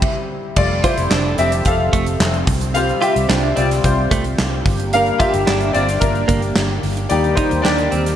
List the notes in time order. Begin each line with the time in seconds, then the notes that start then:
Already playing: G3 C4 E4 G4 E5
0.02 kick, crash
0.56 F1 F3 G3 A3 C4 F4 G4 A4 D5, kick, crash
0.84 E4 F4 C5, kick, closed hi-hat
0.98 F1, closed hi-hat
1.11 F1 D4, snare, clap
1.38 F1 C4 G4 E5, closed hi-hat
1.52 closed hi-hat
1.65 F1 A4 F5, kick, closed hi-hat
1.93 F1 A3, kick, closed hi-hat
2.06 closed hi-hat
2.20 F1, snare, clap
2.34 closed hi-hat
2.47 C2 C3 F4, kick, open hi-hat
2.61 closed hi-hat
2.74 G3 C4 F4 C5 F5, closed hi-hat
2.89 closed hi-hat
3.01 F4 G4 E5, closed hi-hat
3.16 C2, closed hi-hat
3.29 C2 D4, snare, clap
3.56 C2 G3 C4 F4 D5, closed hi-hat
3.71 snare, closed hi-hat
3.84 C2 F4 C5, kick, closed hi-hat
4.11 C2 A3, kick, closed hi-hat
4.24 closed hi-hat
4.38 C2, snare, clap
4.66 G1 A#3 D4, kick, open hi-hat
4.80 closed hi-hat
4.93 G3 A#3 D4 A#4 F5, closed hi-hat
5.06 closed hi-hat
5.20 F4 G4 E5, kick, closed hi-hat
5.34 G1, closed hi-hat
5.47 G1 D4, snare, clap
5.61 closed hi-hat
5.73 G1 C4 F4 D5, closed hi-hat
5.88 snare, closed hi-hat
6.00 G1 D4 A#4, kick, closed hi-hat
6.15 closed hi-hat
6.28 G1 A#3, kick, closed hi-hat
6.42 closed hi-hat
6.56 G1, snare, clap
6.83 G1, open hi-hat
6.97 closed hi-hat
7.09 D#2 D#3 G3 A#3 D#4 G4 A#4 D5, closed hi-hat
7.24 closed hi-hat
7.35 D#4 C5, kick, closed hi-hat
7.51 D#2, closed hi-hat
7.62 D#2 D4 G4 D5, snare, clap
7.78 closed hi-hat
7.91 D#2 C4, closed hi-hat
8.06 snare, closed hi-hat